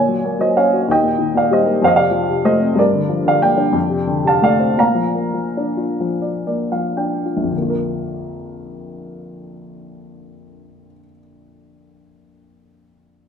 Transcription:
0.00 0.86 A#2 soft
0.00 0.38 C#5 soft
0.00 0.42 G#5 medium
0.08 0.38 F#3 soft
0.25 0.87 A#3 soft
0.39 0.86 F#3 soft
0.39 0.56 C5 soft
0.39 0.57 D#5 soft
0.57 0.88 C#4 soft
0.57 0.87 C#5 soft
0.57 0.86 F5 soft
0.73 0.88 F#4 soft
0.88 1.80 D#2 soft
0.88 1.34 D#5 soft
0.88 1.39 G5 medium
1.03 1.32 A#2 soft
1.18 1.80 D#3 soft
1.34 1.80 A#2 soft
1.34 1.53 F5 medium
1.38 1.52 D5 soft
1.51 1.82 G3 soft
1.51 1.81 C5 soft
1.51 1.84 D#5 soft
1.65 1.81 A#3 soft
1.82 2.75 F2 soft
1.82 1.90 C5 soft
1.82 1.90 F5 medium
1.87 1.95 D#5 soft
1.95 2.28 C3 soft
1.95 2.43 D5 soft
1.95 2.48 F5 medium
2.11 2.75 F3 soft
2.29 2.76 C3 soft
2.45 2.76 A3 soft
2.45 2.75 C5 soft
2.45 2.79 D#5 medium
2.60 2.77 C4 soft
2.75 3.71 G2 soft
2.75 3.24 A#4 soft
2.75 3.26 D5 medium
2.93 3.24 D3 soft
3.09 3.73 F3 soft
3.25 3.73 D3 soft
3.25 3.42 D5 soft
3.25 3.44 F5 medium
3.41 3.74 A#3 soft
3.41 4.22 D5 soft
3.41 4.21 G5 medium
3.58 3.74 D4 soft
3.73 4.74 F2 soft
3.90 4.23 C3 soft
4.07 4.76 D3 soft
4.25 4.77 C3 soft
4.25 4.42 F5 soft
4.25 4.44 A5 medium
4.42 4.77 A3 soft
4.42 4.77 D5 soft
4.42 4.78 F5 medium
4.60 4.78 C4 soft
4.77 7.48 A#2 soft
4.77 6.43 F5 soft
4.77 6.43 A#5 medium
4.95 5.32 F3 soft
5.15 6.46 A#3 soft
5.34 5.99 F3 soft
5.57 6.96 D4 soft
5.77 7.24 F4 soft
6.00 6.71 F3 soft
6.22 6.45 D5 soft
6.47 7.50 A#3 soft
6.47 6.70 D5 soft
6.72 7.51 F3 soft
6.72 6.96 F5 soft
6.97 7.51 D4 soft
6.97 7.49 G5 soft
7.26 7.53 F4 soft
7.37 10.85 A#1 soft
7.43 10.91 F2 soft
7.49 10.98 D3 soft
7.56 11.05 A#3 soft
7.62 11.11 F4 soft
7.70 11.18 A#4 soft

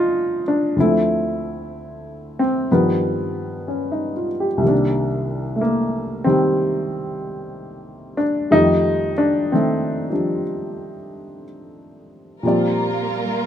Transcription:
0.00 0.77 G2 soft
0.00 0.77 A#2 soft
0.00 0.75 F3 medium
0.00 0.75 A#3 medium
0.00 0.78 C4 medium
0.00 0.48 D4 medium
0.00 0.78 D#4 medium
0.00 0.42 F4 medium
0.00 0.77 A4 soft
0.48 0.76 D4 medium
0.76 2.69 D2 soft
0.76 2.70 D3 soft
0.76 2.71 F3 soft
0.76 2.38 C4 soft
0.80 2.68 A3 medium
0.80 2.43 E4 medium
2.39 2.68 C4 medium
2.71 4.63 G2 soft
2.71 4.62 D#3 soft
2.71 4.64 F3 soft
2.71 4.26 B3 medium
2.71 4.64 A#4 soft
3.68 4.11 C#4 soft
3.92 4.31 D#4 soft
4.17 4.45 F4 soft
4.40 4.73 G4 soft
4.58 8.47 C2 soft
4.58 8.48 C3 soft
4.64 6.25 D#3 soft
4.64 5.60 A#3 soft
4.68 8.16 D4 medium
5.56 5.60 A3 soft
5.61 6.25 A#3 medium
6.24 8.14 D#3 medium
6.24 8.14 G3 medium
6.24 8.22 C4 medium
8.17 8.48 D4 medium
8.51 12.44 F2 soft
8.51 9.52 D#3 soft
8.51 10.08 F3 soft
8.51 8.53 G3 soft
8.51 10.10 G3 medium
8.51 9.53 A3 soft
8.51 9.11 D#4 medium
9.18 9.50 D4 medium
9.52 11.43 D#3 medium
9.52 11.44 A3 soft
9.52 10.43 C4 medium
10.10 12.42 F3 soft
10.10 12.44 G3 soft
10.10 12.45 D4 soft
12.42 13.46 A#2 soft
12.42 13.46 F3 soft
12.42 13.46 G3 medium
12.42 13.46 G3 soft
12.42 13.46 A#3 medium
12.42 13.46 F4 medium
12.42 13.46 A#4 medium
12.46 13.46 C4 soft
12.46 13.46 D5 medium

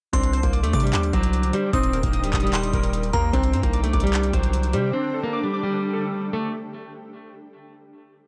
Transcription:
0.13 0.42 C2 loud
0.13 0.42 C4 loud
0.13 0.92 D4 medium
0.13 1.72 D4 medium
0.13 1.72 C5 medium
0.13 6.49 G5 loud
0.13 0.70 C6 loud
0.13 kick loud
0.13 closed hi-hat medium
0.23 closed hi-hat medium
0.33 1.12 C5 medium
0.33 closed hi-hat medium
0.43 0.65 C2 loud
0.43 0.62 A#3 medium
0.43 kick medium
0.43 closed hi-hat medium
0.53 0.72 D6 medium
0.53 closed hi-hat medium
0.63 0.73 D#2 loud
0.63 0.82 A3 medium
0.63 closed hi-hat medium
0.73 0.95 C3 loud
0.73 1.69 D6 medium
0.73 1.73 D6 loud
0.73 kick loud
0.73 closed hi-hat medium
0.80 1.12 G3 medium
0.80 closed hi-hat medium
0.87 closed hi-hat medium
0.93 1.12 D#2 loud
0.93 1.73 D4 medium
0.93 clap loud
0.93 closed hi-hat medium
1.03 closed hi-hat medium
1.13 1.52 C2 loud
1.13 1.51 F#3 medium
1.13 1.53 C5 medium
1.13 kick loud
1.13 closed hi-hat medium
1.23 closed hi-hat medium
1.33 closed hi-hat medium
1.43 closed hi-hat soft
1.53 1.72 G3 medium
1.53 1.74 C5 medium
1.53 closed hi-hat medium
1.73 2.02 D#1 loud
1.73 2.02 C4 loud
1.73 2.53 D#4 medium
1.73 3.32 D#4 medium
1.73 3.32 A#4 medium
1.73 2.49 D#6 loud
1.73 kick loud
1.73 closed hi-hat medium
1.83 closed hi-hat medium
1.93 2.73 A#4 medium
1.93 closed hi-hat medium
2.03 2.25 D#1 loud
2.03 2.22 A#3 medium
2.03 kick medium
2.03 closed hi-hat medium
2.13 2.32 D#6 medium
2.13 closed hi-hat medium
2.23 2.33 D1 loud
2.23 2.42 G3 medium
2.23 closed hi-hat medium
2.33 2.72 D#1 loud
2.33 3.34 D#6 loud
2.33 kick loud
2.33 clap loud
2.33 closed hi-hat medium
2.40 3.09 G3 medium
2.40 closed hi-hat medium
2.47 closed hi-hat medium
2.53 3.34 D#4 medium
2.53 3.10 C6 medium
2.53 clap loud
2.53 closed hi-hat medium
2.63 closed hi-hat medium
2.73 3.12 D#1 loud
2.73 3.12 A#4 medium
2.73 kick loud
2.73 closed hi-hat medium
2.83 closed hi-hat medium
2.93 closed hi-hat medium
3.03 closed hi-hat soft
3.13 3.33 D#2 loud
3.13 3.32 A#3 medium
3.13 3.33 A#4 medium
3.13 3.32 A#5 medium
3.13 kick loud
3.13 closed hi-hat medium
3.33 3.55 C2 loud
3.33 3.62 C4 loud
3.33 6.50 D4 medium
3.33 4.12 D4 medium
3.33 4.92 C5 medium
3.33 kick loud
3.33 closed hi-hat medium
3.43 closed hi-hat medium
3.53 3.63 G2 loud
3.53 4.32 C5 medium
3.53 closed hi-hat medium
3.63 3.92 C2 loud
3.63 3.82 A#3 medium
3.63 kick medium
3.63 closed hi-hat medium
3.73 3.92 D6 medium
3.73 closed hi-hat medium
3.83 4.02 A3 medium
3.83 closed hi-hat medium
3.93 4.32 C2 loud
3.93 4.93 D6 loud
3.93 kick loud
3.93 closed hi-hat medium
4.00 4.32 G3 medium
4.00 closed hi-hat medium
4.07 closed hi-hat medium
4.13 4.92 D4 medium
4.13 clap loud
4.13 closed hi-hat medium
4.23 closed hi-hat medium
4.33 4.75 C2 loud
4.33 4.71 F#3 medium
4.33 4.72 C5 medium
4.33 kick loud
4.33 closed hi-hat medium
4.43 closed hi-hat medium
4.53 closed hi-hat medium
4.63 closed hi-hat soft
4.73 4.92 C3 loud
4.73 4.92 G3 medium
4.73 4.93 C5 medium
4.73 closed hi-hat medium
4.93 5.22 C4 loud
4.93 5.73 D4 loud
4.93 6.52 G4 medium
4.93 6.52 A4 medium
5.14 5.92 A4 medium
5.23 5.42 A#3 medium
5.33 5.52 D6 medium
5.44 5.62 G3 medium
5.53 6.53 D6 medium
5.63 6.29 G3 medium
5.74 6.54 D4 medium
5.93 6.32 A4 medium
6.33 6.52 A3 medium
6.33 6.53 A4 medium

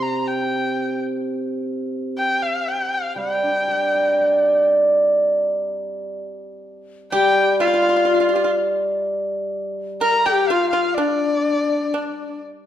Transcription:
0.00 2.18 C3 medium
0.00 0.28 A#5 medium
0.27 0.98 G5 medium
2.18 2.44 G5 medium
2.42 2.70 F5 medium
2.68 2.95 G5 medium
2.94 3.17 F5 medium
3.16 6.15 G3 soft
3.16 4.64 G5 medium
3.43 5.43 D4 soft
3.68 5.67 G4 soft
3.95 5.92 A#4 soft
4.21 6.17 D5 soft
7.12 10.02 G3 medium
7.12 7.57 G4 medium
7.12 7.62 G4 medium
7.12 7.57 G5 loud
7.60 7.66 F4 medium
7.60 8.35 F4 medium
7.60 8.53 F5 medium
7.67 7.72 F4 soft
7.74 7.81 F4 soft
7.82 7.88 F4 soft
7.89 7.95 F4 medium
7.96 8.04 F4 soft
8.05 8.12 F4 medium
8.14 8.19 F4 soft
8.20 8.27 F4 soft
8.29 8.34 F4 soft
8.33 8.42 F4 medium
8.33 8.58 G4 medium
8.44 8.50 F4 medium
10.01 10.24 A#4 medium
10.01 10.27 A#5 loud
10.26 10.48 G4 medium
10.26 10.53 G4 medium
10.26 10.49 G5 medium
10.47 10.72 F4 medium
10.47 10.69 F5 medium
10.52 11.00 F4 medium
10.70 10.95 F4 medium
10.70 10.96 F5 medium
10.94 11.89 D4 medium
10.94 12.39 D5 medium
10.98 12.41 D4 medium
11.94 12.38 D4 medium

